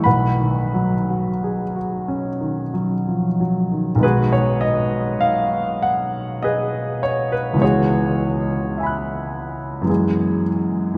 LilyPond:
<<
  \new Staff \with { instrumentName = "Grand piano" } { \time 3/4 \key b \major \tempo 4 = 50 <b' fis'' b''>2 r4 | <fis' gis' b'>16 cis''16 dis''8 eis''8 fis''8 <gis' b' dis''>8 cis''16 b'16 | <fis' gis' cis''>2~ <fis' gis' cis''>8 r8 | }
  \new Staff \with { instrumentName = "Grand piano" } { \clef bass \time 3/4 \key b \major << { b,,16 dis16 fis16 fis'16 gis'16 fis'16 cis'16 dis16 fis16 eis16 fis16 dis16 | r2. | r4 <e'' gis'' b'' fis'''>4 r4 | } \\ { r2. | <b,, dis gis b>2. | <cis, e gis b>2 <fis, e gis b gis'>4 | } >> }
>>